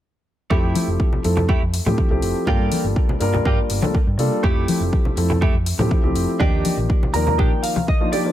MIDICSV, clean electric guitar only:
0, 0, Header, 1, 3, 480
1, 0, Start_track
1, 0, Key_signature, -1, "major"
1, 0, Tempo, 491803
1, 497, Time_signature, 4, 2, 24, 8
1, 8121, End_track
2, 0, Start_track
2, 0, Title_t, "Clean electric guitar"
2, 0, Program_c, 0, 27
2, 490, Note_on_c, 0, 57, 95
2, 497, Note_on_c, 0, 67, 99
2, 501, Note_on_c, 0, 64, 80
2, 856, Note_off_c, 0, 57, 0
2, 858, Note_off_c, 0, 64, 0
2, 858, Note_off_c, 0, 67, 0
2, 1451, Note_on_c, 0, 57, 83
2, 1456, Note_on_c, 0, 67, 84
2, 1459, Note_on_c, 0, 64, 61
2, 1577, Note_off_c, 0, 57, 0
2, 1577, Note_off_c, 0, 64, 0
2, 1577, Note_off_c, 0, 67, 0
2, 2415, Note_on_c, 0, 58, 104
2, 2419, Note_on_c, 0, 65, 94
2, 2422, Note_on_c, 0, 67, 102
2, 2779, Note_off_c, 0, 58, 0
2, 2779, Note_off_c, 0, 65, 0
2, 2779, Note_off_c, 0, 67, 0
2, 3372, Note_on_c, 0, 58, 81
2, 3380, Note_on_c, 0, 65, 67
2, 3385, Note_on_c, 0, 67, 83
2, 3498, Note_off_c, 0, 58, 0
2, 3499, Note_off_c, 0, 65, 0
2, 3499, Note_off_c, 0, 67, 0
2, 4327, Note_on_c, 0, 57, 106
2, 4333, Note_on_c, 0, 67, 114
2, 4335, Note_on_c, 0, 64, 75
2, 4695, Note_off_c, 0, 57, 0
2, 4695, Note_off_c, 0, 64, 0
2, 4696, Note_off_c, 0, 67, 0
2, 5284, Note_on_c, 0, 57, 83
2, 5289, Note_on_c, 0, 67, 87
2, 5294, Note_on_c, 0, 64, 69
2, 5413, Note_off_c, 0, 57, 0
2, 5413, Note_off_c, 0, 64, 0
2, 5414, Note_off_c, 0, 67, 0
2, 6242, Note_on_c, 0, 62, 103
2, 6248, Note_on_c, 0, 63, 91
2, 6254, Note_on_c, 0, 67, 99
2, 6613, Note_off_c, 0, 62, 0
2, 6613, Note_off_c, 0, 63, 0
2, 6615, Note_off_c, 0, 67, 0
2, 6965, Note_on_c, 0, 82, 69
2, 7196, Note_off_c, 0, 82, 0
2, 7205, Note_on_c, 0, 63, 71
2, 7209, Note_on_c, 0, 62, 77
2, 7213, Note_on_c, 0, 67, 79
2, 7219, Note_on_c, 0, 79, 58
2, 7335, Note_off_c, 0, 62, 0
2, 7335, Note_off_c, 0, 63, 0
2, 7335, Note_off_c, 0, 67, 0
2, 7436, Note_off_c, 0, 79, 0
2, 7444, Note_on_c, 0, 77, 70
2, 7675, Note_off_c, 0, 77, 0
2, 7697, Note_on_c, 0, 75, 61
2, 7915, Note_off_c, 0, 75, 0
2, 7928, Note_on_c, 0, 74, 66
2, 8121, Note_off_c, 0, 74, 0
2, 8121, End_track
3, 0, Start_track
3, 0, Title_t, "Muted clean electric guitar strokes"
3, 1218, Note_on_c, 9, 29, 34
3, 1315, Note_off_c, 9, 29, 0
3, 1336, Note_on_c, 9, 29, 88
3, 1433, Note_off_c, 9, 29, 0
3, 1695, Note_on_c, 9, 29, 34
3, 1792, Note_off_c, 9, 29, 0
3, 1819, Note_on_c, 9, 29, 91
3, 1917, Note_off_c, 9, 29, 0
3, 1937, Note_on_c, 9, 29, 33
3, 2034, Note_off_c, 9, 29, 0
3, 3134, Note_on_c, 9, 29, 29
3, 3231, Note_off_c, 9, 29, 0
3, 3257, Note_on_c, 9, 29, 78
3, 3354, Note_off_c, 9, 29, 0
3, 3615, Note_on_c, 9, 29, 31
3, 3712, Note_off_c, 9, 29, 0
3, 3733, Note_on_c, 9, 29, 81
3, 3830, Note_off_c, 9, 29, 0
3, 3857, Note_on_c, 9, 29, 30
3, 3955, Note_off_c, 9, 29, 0
3, 5052, Note_on_c, 9, 29, 31
3, 5150, Note_off_c, 9, 29, 0
3, 5172, Note_on_c, 9, 29, 86
3, 5269, Note_off_c, 9, 29, 0
3, 5526, Note_on_c, 9, 29, 32
3, 5624, Note_off_c, 9, 29, 0
3, 5652, Note_on_c, 9, 29, 80
3, 5749, Note_off_c, 9, 29, 0
3, 5766, Note_on_c, 9, 29, 31
3, 5864, Note_off_c, 9, 29, 0
3, 6971, Note_on_c, 9, 29, 30
3, 7069, Note_off_c, 9, 29, 0
3, 7085, Note_on_c, 9, 29, 81
3, 7182, Note_off_c, 9, 29, 0
3, 7452, Note_on_c, 9, 29, 27
3, 7549, Note_off_c, 9, 29, 0
3, 7567, Note_on_c, 9, 29, 77
3, 7664, Note_off_c, 9, 29, 0
3, 7684, Note_on_c, 9, 29, 29
3, 7781, Note_off_c, 9, 29, 0
3, 8121, End_track
0, 0, End_of_file